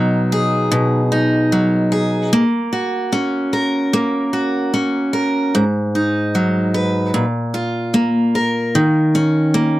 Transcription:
0, 0, Header, 1, 2, 480
1, 0, Start_track
1, 0, Key_signature, -6, "minor"
1, 0, Tempo, 802139
1, 1395, Time_signature, 4, 2, 24, 8
1, 5863, End_track
2, 0, Start_track
2, 0, Title_t, "Steel-string acoustic guitar"
2, 0, Program_c, 0, 25
2, 0, Note_on_c, 0, 47, 72
2, 0, Note_on_c, 0, 51, 65
2, 0, Note_on_c, 0, 54, 59
2, 0, Note_on_c, 0, 63, 53
2, 193, Note_on_c, 0, 68, 54
2, 421, Note_off_c, 0, 47, 0
2, 428, Note_on_c, 0, 47, 66
2, 607, Note_off_c, 0, 51, 0
2, 662, Note_off_c, 0, 63, 0
2, 669, Note_on_c, 0, 63, 50
2, 908, Note_off_c, 0, 54, 0
2, 911, Note_on_c, 0, 54, 52
2, 1140, Note_off_c, 0, 68, 0
2, 1148, Note_on_c, 0, 68, 56
2, 1390, Note_off_c, 0, 54, 0
2, 1393, Note_on_c, 0, 58, 76
2, 1449, Note_off_c, 0, 47, 0
2, 1449, Note_off_c, 0, 63, 0
2, 1449, Note_off_c, 0, 68, 0
2, 1631, Note_on_c, 0, 66, 54
2, 1870, Note_on_c, 0, 61, 61
2, 2112, Note_on_c, 0, 70, 51
2, 2347, Note_off_c, 0, 58, 0
2, 2354, Note_on_c, 0, 58, 67
2, 2589, Note_off_c, 0, 66, 0
2, 2591, Note_on_c, 0, 66, 48
2, 2827, Note_off_c, 0, 61, 0
2, 2834, Note_on_c, 0, 61, 57
2, 3063, Note_off_c, 0, 70, 0
2, 3071, Note_on_c, 0, 70, 54
2, 3319, Note_on_c, 0, 44, 72
2, 3370, Note_off_c, 0, 66, 0
2, 3370, Note_off_c, 0, 70, 0
2, 3371, Note_off_c, 0, 58, 0
2, 3372, Note_off_c, 0, 61, 0
2, 3561, Note_on_c, 0, 63, 52
2, 3799, Note_on_c, 0, 54, 57
2, 4035, Note_on_c, 0, 71, 52
2, 4270, Note_off_c, 0, 44, 0
2, 4272, Note_on_c, 0, 46, 62
2, 4332, Note_off_c, 0, 71, 0
2, 4334, Note_off_c, 0, 54, 0
2, 4334, Note_off_c, 0, 63, 0
2, 4512, Note_on_c, 0, 65, 51
2, 4750, Note_on_c, 0, 58, 59
2, 4997, Note_on_c, 0, 70, 55
2, 5236, Note_on_c, 0, 51, 80
2, 5289, Note_off_c, 0, 46, 0
2, 5289, Note_off_c, 0, 65, 0
2, 5475, Note_on_c, 0, 61, 62
2, 5707, Note_off_c, 0, 58, 0
2, 5709, Note_on_c, 0, 58, 63
2, 5863, Note_off_c, 0, 51, 0
2, 5863, Note_off_c, 0, 58, 0
2, 5863, Note_off_c, 0, 61, 0
2, 5863, Note_off_c, 0, 70, 0
2, 5863, End_track
0, 0, End_of_file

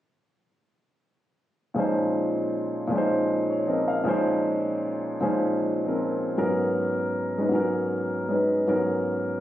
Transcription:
0, 0, Header, 1, 2, 480
1, 0, Start_track
1, 0, Key_signature, -5, "minor"
1, 0, Tempo, 383142
1, 2215, Time_signature, 3, 2, 24, 8
1, 11780, End_track
2, 0, Start_track
2, 0, Title_t, "Grand piano"
2, 0, Program_c, 0, 0
2, 2182, Note_on_c, 0, 46, 44
2, 2194, Note_on_c, 0, 53, 43
2, 2201, Note_on_c, 0, 56, 40
2, 2218, Note_on_c, 0, 61, 42
2, 2229, Note_on_c, 0, 63, 40
2, 2246, Note_on_c, 0, 72, 51
2, 3579, Note_off_c, 0, 46, 0
2, 3598, Note_on_c, 0, 46, 50
2, 3609, Note_off_c, 0, 53, 0
2, 3628, Note_on_c, 0, 53, 47
2, 3635, Note_off_c, 0, 56, 0
2, 3654, Note_on_c, 0, 56, 47
2, 3656, Note_off_c, 0, 61, 0
2, 3663, Note_off_c, 0, 63, 0
2, 3672, Note_off_c, 0, 72, 0
2, 3675, Note_on_c, 0, 61, 46
2, 3702, Note_on_c, 0, 63, 49
2, 3730, Note_on_c, 0, 72, 58
2, 4387, Note_on_c, 0, 73, 37
2, 4578, Note_off_c, 0, 53, 0
2, 4597, Note_on_c, 0, 53, 36
2, 4607, Note_on_c, 0, 75, 41
2, 4613, Note_on_c, 0, 60, 32
2, 4633, Note_on_c, 0, 70, 41
2, 4717, Note_off_c, 0, 73, 0
2, 4858, Note_on_c, 0, 77, 46
2, 4982, Note_off_c, 0, 75, 0
2, 5036, Note_off_c, 0, 46, 0
2, 5050, Note_off_c, 0, 53, 0
2, 5054, Note_on_c, 0, 46, 55
2, 5062, Note_off_c, 0, 56, 0
2, 5069, Note_on_c, 0, 53, 55
2, 5077, Note_off_c, 0, 61, 0
2, 5081, Note_on_c, 0, 56, 52
2, 5092, Note_off_c, 0, 63, 0
2, 5095, Note_off_c, 0, 60, 0
2, 5096, Note_on_c, 0, 61, 55
2, 5099, Note_off_c, 0, 72, 0
2, 5105, Note_off_c, 0, 70, 0
2, 5111, Note_on_c, 0, 63, 52
2, 5118, Note_on_c, 0, 72, 62
2, 5192, Note_off_c, 0, 77, 0
2, 6501, Note_off_c, 0, 46, 0
2, 6506, Note_off_c, 0, 53, 0
2, 6511, Note_off_c, 0, 56, 0
2, 6520, Note_on_c, 0, 46, 49
2, 6523, Note_off_c, 0, 61, 0
2, 6525, Note_on_c, 0, 53, 44
2, 6527, Note_off_c, 0, 63, 0
2, 6527, Note_off_c, 0, 72, 0
2, 6530, Note_on_c, 0, 56, 45
2, 6542, Note_on_c, 0, 61, 46
2, 6546, Note_on_c, 0, 63, 42
2, 6546, Note_on_c, 0, 72, 50
2, 7310, Note_off_c, 0, 53, 0
2, 7329, Note_on_c, 0, 53, 35
2, 7342, Note_on_c, 0, 60, 34
2, 7367, Note_on_c, 0, 70, 41
2, 7968, Note_off_c, 0, 46, 0
2, 7974, Note_off_c, 0, 56, 0
2, 7975, Note_off_c, 0, 53, 0
2, 7976, Note_off_c, 0, 61, 0
2, 7981, Note_off_c, 0, 63, 0
2, 7982, Note_off_c, 0, 60, 0
2, 7982, Note_off_c, 0, 70, 0
2, 7982, Note_off_c, 0, 72, 0
2, 7984, Note_on_c, 0, 44, 45
2, 7993, Note_on_c, 0, 54, 42
2, 7993, Note_on_c, 0, 59, 46
2, 7994, Note_on_c, 0, 61, 45
2, 8001, Note_on_c, 0, 70, 56
2, 9235, Note_off_c, 0, 61, 0
2, 9245, Note_on_c, 0, 56, 39
2, 9254, Note_on_c, 0, 61, 37
2, 9268, Note_on_c, 0, 63, 35
2, 9281, Note_on_c, 0, 71, 41
2, 9363, Note_off_c, 0, 44, 0
2, 9382, Note_on_c, 0, 44, 46
2, 9391, Note_off_c, 0, 54, 0
2, 9400, Note_off_c, 0, 59, 0
2, 9410, Note_on_c, 0, 54, 47
2, 9413, Note_off_c, 0, 56, 0
2, 9418, Note_off_c, 0, 61, 0
2, 9419, Note_on_c, 0, 59, 45
2, 9424, Note_off_c, 0, 63, 0
2, 9429, Note_off_c, 0, 70, 0
2, 9431, Note_off_c, 0, 71, 0
2, 9440, Note_on_c, 0, 61, 44
2, 9456, Note_on_c, 0, 70, 54
2, 10370, Note_off_c, 0, 61, 0
2, 10380, Note_on_c, 0, 56, 40
2, 10389, Note_on_c, 0, 61, 36
2, 10403, Note_on_c, 0, 63, 36
2, 10414, Note_on_c, 0, 71, 41
2, 10838, Note_off_c, 0, 44, 0
2, 10849, Note_off_c, 0, 54, 0
2, 10853, Note_off_c, 0, 59, 0
2, 10853, Note_off_c, 0, 61, 0
2, 10858, Note_off_c, 0, 56, 0
2, 10868, Note_on_c, 0, 44, 46
2, 10868, Note_on_c, 0, 54, 43
2, 10869, Note_off_c, 0, 63, 0
2, 10869, Note_off_c, 0, 70, 0
2, 10872, Note_on_c, 0, 59, 42
2, 10872, Note_on_c, 0, 61, 47
2, 10875, Note_off_c, 0, 71, 0
2, 10888, Note_on_c, 0, 70, 55
2, 11780, Note_off_c, 0, 44, 0
2, 11780, Note_off_c, 0, 54, 0
2, 11780, Note_off_c, 0, 59, 0
2, 11780, Note_off_c, 0, 61, 0
2, 11780, Note_off_c, 0, 70, 0
2, 11780, End_track
0, 0, End_of_file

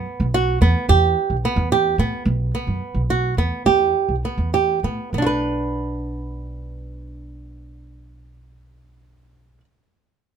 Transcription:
0, 0, Header, 1, 3, 480
1, 0, Start_track
1, 0, Key_signature, 2, "minor"
1, 0, Tempo, 554017
1, 776, Time_signature, 5, 3, 24, 8
1, 3419, Tempo, 597015
1, 8580, End_track
2, 0, Start_track
2, 0, Title_t, "Nylon-string guitar"
2, 0, Program_c, 0, 24
2, 0, Note_on_c, 0, 59, 58
2, 225, Note_off_c, 0, 59, 0
2, 298, Note_on_c, 0, 66, 68
2, 499, Note_off_c, 0, 66, 0
2, 534, Note_on_c, 0, 59, 60
2, 737, Note_off_c, 0, 59, 0
2, 773, Note_on_c, 0, 67, 78
2, 1176, Note_off_c, 0, 67, 0
2, 1256, Note_on_c, 0, 59, 58
2, 1455, Note_off_c, 0, 59, 0
2, 1491, Note_on_c, 0, 67, 68
2, 1690, Note_off_c, 0, 67, 0
2, 1728, Note_on_c, 0, 59, 59
2, 1927, Note_off_c, 0, 59, 0
2, 2206, Note_on_c, 0, 59, 54
2, 2610, Note_off_c, 0, 59, 0
2, 2687, Note_on_c, 0, 66, 60
2, 2891, Note_off_c, 0, 66, 0
2, 2930, Note_on_c, 0, 59, 53
2, 3135, Note_off_c, 0, 59, 0
2, 3172, Note_on_c, 0, 67, 69
2, 3581, Note_off_c, 0, 67, 0
2, 3662, Note_on_c, 0, 59, 47
2, 3859, Note_off_c, 0, 59, 0
2, 3895, Note_on_c, 0, 67, 57
2, 4096, Note_off_c, 0, 67, 0
2, 4140, Note_on_c, 0, 59, 49
2, 4339, Note_off_c, 0, 59, 0
2, 4379, Note_on_c, 0, 59, 47
2, 4412, Note_on_c, 0, 62, 47
2, 4445, Note_on_c, 0, 66, 47
2, 4476, Note_off_c, 0, 66, 0
2, 4479, Note_on_c, 0, 71, 48
2, 7949, Note_off_c, 0, 59, 0
2, 7966, Note_off_c, 0, 62, 0
2, 7999, Note_off_c, 0, 71, 0
2, 8580, End_track
3, 0, Start_track
3, 0, Title_t, "Upright bass"
3, 0, Program_c, 1, 32
3, 171, Note_on_c, 1, 35, 70
3, 492, Note_off_c, 1, 35, 0
3, 528, Note_on_c, 1, 40, 69
3, 638, Note_off_c, 1, 40, 0
3, 769, Note_on_c, 1, 40, 78
3, 983, Note_off_c, 1, 40, 0
3, 1125, Note_on_c, 1, 35, 58
3, 1234, Note_off_c, 1, 35, 0
3, 1354, Note_on_c, 1, 40, 74
3, 1676, Note_off_c, 1, 40, 0
3, 1717, Note_on_c, 1, 45, 67
3, 1826, Note_off_c, 1, 45, 0
3, 1953, Note_on_c, 1, 35, 78
3, 2169, Note_off_c, 1, 35, 0
3, 2315, Note_on_c, 1, 42, 58
3, 2424, Note_off_c, 1, 42, 0
3, 2552, Note_on_c, 1, 35, 66
3, 2879, Note_off_c, 1, 35, 0
3, 2921, Note_on_c, 1, 40, 63
3, 3032, Note_off_c, 1, 40, 0
3, 3169, Note_on_c, 1, 40, 68
3, 3390, Note_off_c, 1, 40, 0
3, 3531, Note_on_c, 1, 35, 52
3, 3637, Note_off_c, 1, 35, 0
3, 3764, Note_on_c, 1, 40, 61
3, 4086, Note_off_c, 1, 40, 0
3, 4130, Note_on_c, 1, 45, 54
3, 4237, Note_off_c, 1, 45, 0
3, 4369, Note_on_c, 1, 35, 60
3, 7944, Note_off_c, 1, 35, 0
3, 8580, End_track
0, 0, End_of_file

